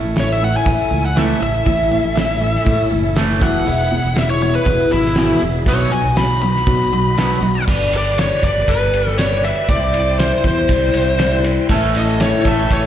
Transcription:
Already playing: A2 E3 A3 C#4 E4 A4 E5
0.04 A1
0.16 A2 E3 A3 E4, snare, open hi-hat
0.20 C#4 C#5
0.32 E5
0.42 A2 E3 A3 C#4 E4 F#5
0.57 G#5
0.65 A1 A2 E3 A3 C#4 E4, kick, open hi-hat
0.90 C#2 A2 E3 C#4 E4
0.96 A3
1.06 F#5
1.16 A2 E3 A3 C#4 E4 E5, snare, open hi-hat
1.40 A1 A2 E3 A3 C#4 E4 E5
1.64 A1 A2 E3 A3 C#4 E4, kick, open hi-hat
1.89 A2 E3 A3 C#4 E4
2.04 A1
2.13 A2 E3 A3 C#4 E4, snare, open hi-hat
2.39 A2 E3 A3 C#4 E4
2.55 snare
2.64 A2 E3 A3 C#4 E4, kick, open hi-hat
2.90 F#1 A2 E3 A3 C#4 E4
3.14 A2 E3 A3 C#4 E4, snare, open hi-hat
3.40 E1 E2 B2 E3 G#3 B3 E4 G#4 F#5, kick
3.65 E1 E2 B2 E3 G#3 B3 E4, open hi-hat
3.89 E2 B2 E3 G#3 B3 E4
4.05 E1
4.15 E2 B2 E3 G#3 B3 E4 E5, snare, open hi-hat
4.30 C#5
4.39 E2 E3 G#3 B3 E4 C#5
4.43 B2
4.55 B4
4.63 E1 E2 B2 E3 G#3 B3 E4, kick, open hi-hat
4.67 E2 B2
4.89 G#1 E2 E3 G#3 B3 E4
4.93 B2
5.05 snare
5.15 E2 B2 E3 G#3 B3 E4, snare, open hi-hat
5.41 E1 E2 B2 E3 G#3 B3 E4
5.65 B1 B2 F#3 B3 D#4 F#4 D#5, kick, open hi-hat
5.69 C#5
5.91 B2 F#3 B3 D#4 F#4 G#5
6.04 B1
6.15 B2 F#3 D#4 F#4 B5, snare, open hi-hat
6.41 B2 F#3 B3 D#4 F#4 B5
6.56 snare
6.66 B2 F#3 B3 D#4 F#4, kick, open hi-hat
6.90 B1 B2 F#3 B3 D#4 F#4
7.16 B2 F#3 B3 D#4 F#4, snare, open hi-hat
7.41 B1 B2 F#3 B3 D#4 F#4
7.65 G1 G2 D3 G3 B3 D4 G4 B4 D5 B5, kick, crash
7.91 G3 B3 D4 G4, ride
7.97 D5
8.15 G2 D3 G3 B3 D4 G4, ride
8.19 C#5, snare
8.41 G1 G3 B3 D4 G4 D5, kick, ride
8.57 snare
8.66 G1 G3 B3 D4 G4 B4, kick, ride
8.92 G3 B3 D4 G4, ride
9.07 snare
9.18 G2 D3 G3 B3 D4 G4 C#5, snare, ride
9.43 G3 B3 D4 G4 E5, ride
9.68 C2 C3 E3 G3 C4 E4 C5 D5 G5 C6, kick, ride
9.94 G3 C4 E4, ride
10.18 C3 E3 G3 C4 E4 C5, snare, ride
10.44 E2 G3 C4 E4 C5, kick, ride
10.67 C2 E3 G3 C4 E4, kick, ride
10.94 C2 G3 C4 E4, ride
11.19 C3 E3 G3 C4 E4, snare, ride
11.43 G3 C4 E4, ride
11.69 A1 A2 E3 A3 C#4 E4 A4 C#5 A5 C#6, kick, ride
11.95 A3 E4 D#5, ride
12.20 A2 E3 A3 C#4 C#5, snare, ride
12.24 E4
12.45 A1 A2 E3 A3 C#4 E4 A4 E5, kick, ride
12.70 A1 E3 A3 C#4 E4 C#5, kick, ride

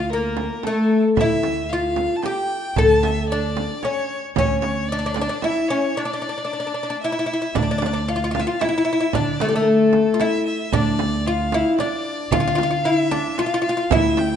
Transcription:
Already playing: D2 F5
0.10 A#3 A#4
0.37 frame drum
0.63 A3 A4, frame drum
1.16 D2 E5, frame drum, darbuka dum
1.21 E4
1.43 darbuka tek, frame drum
1.69 F4 F5, darbuka ka
1.96 darbuka tek, frame drum
2.16 A5
2.22 G4 G5, darbuka tek, frame drum
2.37 darbuka ka
2.76 D2 A4 A5, frame drum, darbuka dum
3.03 E5, darbuka tek, frame drum
3.29 D4 D5, darbuka ka
3.57 darbuka tek, frame drum
3.82 C#4 C#5, darbuka tek, frame drum
3.98 darbuka ka
4.36 D2 C#4 C#5, frame drum, darbuka dum
4.61 C#5, darbuka tek, frame drum
4.88 D4 D5, darbuka ka
4.99 D4
5.06 D4
5.14 D4, darbuka tek, frame drum
5.21 D4
5.29 D4
5.41 E4 E5, darbuka tek, frame drum
5.57 darbuka ka
5.68 C#4 C#5
5.95 D4 C#5
6.05 D4 D5
6.13 D4
6.22 D4
6.29 D4
6.38 D4
6.45 D4
6.53 D4
6.60 D4
6.67 D4
6.74 D4
6.83 D4
6.90 D4
7.02 E4 E5
7.12 E4
7.19 E4
7.26 E4
7.33 E4
7.42 E4
7.55 D2 D4 D5, frame drum, darbuka dum
7.62 D4
7.71 D4
7.78 D4, darbuka tek, frame drum
7.86 D4
7.93 D4
8.08 F4 F5
8.16 F4
8.24 F4
8.31 F4 F5, darbuka tek, frame drum
8.39 F4 E5
8.47 F4 F5
8.60 E4 E5, darbuka tek, frame drum
8.69 E4
8.78 E4
8.85 E4, darbuka ka
8.93 E4
9.00 E4
9.13 D3 D4 D5, frame drum, darbuka dum
9.40 A3, darbuka tek, frame drum
9.49 G3
9.53 A3 A4
9.61 A#4
9.68 A4
9.93 darbuka tek, frame drum
10.14 F4
10.20 E4 E5, darbuka tek, frame drum
10.46 E5, darbuka ka
10.72 D2 D4 D5, frame drum, darbuka dum
10.99 darbuka tek, frame drum
11.26 F4 F5
11.52 E4, darbuka tek, frame drum
11.78 D4 D5, darbuka tek, frame drum
12.06 darbuka ka
12.31 D3 F4 F5, frame drum, darbuka dum
12.40 F4
12.48 F4
12.55 F4, darbuka tek, frame drum
12.63 F4
12.71 F4
12.84 E4 F5, darbuka ka
12.95 E5
13.11 D4, darbuka tek, frame drum
13.37 F4 F5, darbuka tek, frame drum
13.46 F4
13.54 F4
13.62 F4 F5
13.69 F4
13.77 F4
13.90 D2 E4 E5, frame drum, darbuka dum
14.17 G5, darbuka tek, frame drum

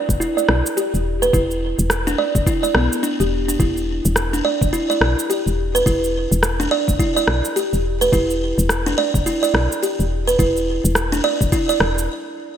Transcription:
0.09 E1, kick, cabasa
0.20 E4, cabasa
0.37 D5, cabasa
0.49 B1, cross-stick
0.66 cabasa
0.77 G4, cabasa
0.94 E1, cabasa
1.22 B4, cabasa
1.33 E1 E4, kick, cabasa
1.51 cabasa
1.79 E1, cabasa
1.90 cross-stick, cabasa
2.07 D4, cabasa
2.18 D5
2.35 E1, kick, cabasa
2.46 E4, kick, cabasa
2.63 D5, cabasa
2.75 B1 B3, cross-stick
2.93 cabasa
3.03 D4, cabasa
3.20 E1 G4, cabasa
3.48 D4, cabasa
3.60 E1 E4, kick, cabasa
3.77 cabasa
4.05 E1, cabasa
4.16 cross-stick, cabasa
4.33 D4, cabasa
4.45 D5
4.61 E1, kick, cabasa
4.73 E4, cabasa
4.90 D5, cabasa
5.01 B1, cross-stick
5.19 cabasa
5.30 G4, cabasa
5.46 E1, cabasa
5.75 B4, cabasa
5.86 E1 E4, kick, cabasa
6.04 cabasa
6.32 E1, cabasa
6.43 cross-stick, cabasa
6.60 D4, cabasa
6.71 D5
6.88 E1, kick, cabasa
6.99 E4, kick, cabasa
7.17 D5, cabasa
7.28 B1, cross-stick
7.45 cabasa
7.56 G4, cabasa
7.73 E1, cabasa
8.01 B4, cabasa
8.12 E1 E4, kick, cabasa
8.30 cabasa
8.58 E1, cabasa
8.69 cross-stick, cabasa
8.86 D4, cabasa
8.98 D5
9.14 E1, kick, cabasa
9.26 E4, cabasa
9.43 D5, cabasa
9.54 B1, cross-stick
9.72 cabasa
9.83 G4, cabasa
9.99 E1, cabasa
10.27 B4, cabasa
10.39 E1 E4, kick, cabasa
10.57 cabasa
10.84 E1, cabasa
10.95 cross-stick, cabasa
11.12 D4, cabasa
11.24 D5
11.41 E1, kick, cabasa
11.52 E4, kick, cabasa
11.69 D5, cabasa
11.80 E1, cross-stick
11.98 cabasa

